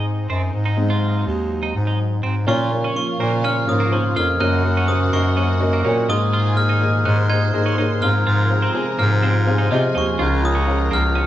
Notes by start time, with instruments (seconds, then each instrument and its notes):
Already playing: bass clarinet G#2, upright piano G#3 C4 D#4, analog synth pad C4 D#4 G#4 D#5
0.29 bass clarinet F#2, clean electric guitar C4
0.53 bass clarinet G#2, analog synth pad F#3
0.66 clean electric guitar D#4
0.77 upright piano G#3 C4 D#4
0.90 clean electric guitar F4
1.26 bass clarinet D#2
1.63 clean electric guitar D#4
1.75 bass clarinet G#2
1.87 clean electric guitar D#4
2.23 bass clarinet G#2, clean electric guitar C4
2.47 bass clarinet A#2, upright piano A#2 A#3 C#4 F4 A#4 C#5, analog synth pad C#3 F3 A#3 F4, clean electric guitar F4, violin section F4 F5, glockenspiel C#6
2.71 upright piano A#3 C#4 F4 A#4 C#5
2.84 clean electric guitar C#4
2.95 upright piano A#3 C#4 F4 A#4 C#5, glockenspiel C#6
3.19 bass clarinet A#2, upright piano A#3 C#4 F4 A#4 C5, clean electric guitar A#3
3.43 upright piano A#3 C#4 F4 A#4 C#5, clean electric guitar C#4, glockenspiel F6
3.67 bass clarinet G#2, upright piano A#3 C#4 F4 A#4 C#5, glockenspiel D#6
3.80 clean electric guitar A#3
3.91 upright piano A#3 C#4 F4 A#4 C5, clean electric guitar C#4
4.16 bass clarinet F2, upright piano A#3 C#4 F4 A#4 C#5, clean electric guitar F4, glockenspiel F6
4.39 bass clarinet F#2, analog synth pad F#3 F#4, upright piano A#3 C#4 F#4 A#4 C#5, clean electric guitar D#4, violin section F#4 F#5, glockenspiel F#6
4.63 upright piano A#3 C#4 F#4 A#4 C#5
4.77 clean electric guitar C#4
4.88 upright piano A#3 C#4 F#4 A#4 C5, glockenspiel D#6
5.12 bass clarinet F#2, upright piano A#3 C#4 F#4 A#4 D#5, clean electric guitar A#3, glockenspiel C#6
5.36 upright piano A#3 C#4 F#4 A#4 C#5, clean electric guitar C#4
5.60 upright piano A#3 C#4 F#4 A#4 D#5
5.73 clean electric guitar A#3
5.84 bass clarinet A#2, upright piano A#3 C#4 F#4 A#4 C#5, clean electric guitar C#4
6.08 bass clarinet G#2, upright piano G#2 A#3 D#4 G#4 A#4 D#5, analog synth pad A#2 D#3 G#3 D#4, clean electric guitar F4, violin section G#4 G#5, glockenspiel D#6
6.33 clean electric guitar F4
6.56 upright piano A#3 D#4 G#4 A#4 D#5, glockenspiel F6
6.69 clean electric guitar D#4
6.80 upright piano A#3 D#4 G#4 A#4 D#5
7.05 bass clarinet G#2, upright piano A#3 D#4 G#4 A#4 D#5, clean electric guitar C#4, violin section C5 C6, glockenspiel F#6
7.29 upright piano A#3 D#4 G#4 A#4 D#5, clean electric guitar D#4, glockenspiel G#6
7.53 bass clarinet G#2, upright piano A#3 D#4 G#4 A#4 D#5
7.66 clean electric guitar C#4
7.77 upright piano A#3 D#4 G#4 A#4 C#5, clean electric guitar D#4
8.02 upright piano G#2 C4 F4 G#4 C5 F5, bass clarinet G#2, analog synth pad C3 F3 F4, clean electric guitar F4, violin section A#4 A#5, glockenspiel F6
8.26 bass clarinet G#2, clean electric guitar F4
8.50 upright piano C4 F4 G#4 C5 F5
8.62 clean electric guitar C4
8.74 upright piano C4 F4 G#4 C5 G#5
8.98 bass clarinet G#2, clean electric guitar A#3, upright piano C4 F4 G#4 C5 F5, glockenspiel F6
9.22 upright piano C4 F4 G#4 C5 F5, clean electric guitar C4
9.46 upright piano C4 F4 G#4 C5 F5, violin section G#4 G#5
9.58 clean electric guitar D#4
9.71 bass clarinet C3, upright piano C4 F4 G#4 C5 D#5, clean electric guitar F4
9.94 bass clarinet D#2, upright piano C4 F4 G#4 C5 F5, clean electric guitar D#4, glockenspiel C#6
10.19 bass clarinet C#2, upright piano C#3 C#4 F4 G#4 C#5 F5, analog synth pad C#3, clean electric guitar F4, violin section A#4 A#5
10.43 upright piano C#4 F4 G#4 C#5 G#5, glockenspiel D#6
10.55 clean electric guitar C#4
10.67 upright piano C#4 F4 G#4 C#5 F5
10.91 bass clarinet C#2, clean electric guitar A#3, upright piano C#4 F4 G#4 C#5 F5, glockenspiel F6
11.15 upright piano C#4 F4 G#4 C#5 G#5, clean electric guitar C#4